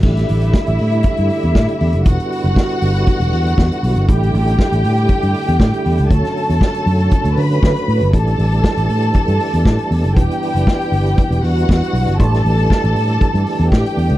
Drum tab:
CC |x---------------|----------------|----------------|----------------|
HH |-xox-xoxxxox-xox|xxox-xoxxxox-xox|xxox-xoxxxox-xox|xxox-xoxxxox-xox|
SD |-o--o-------o---|----o-------o---|----o-------o---|-o--o-------o---|
BD |o---o---o---o---|o---o---o---o---|o---o---o---o---|o---o---o---o---|

CC |----------------|----------------|----------------|
HH |xxox-xoxxxox-xox|xxox-xoxxxox-xox|xxox-xoxxxox-xox|
SD |----o-------o---|----o-------o---|-o--o-------o---|
BD |o---o---o---o---|o---o---o---o---|o---o---o---o---|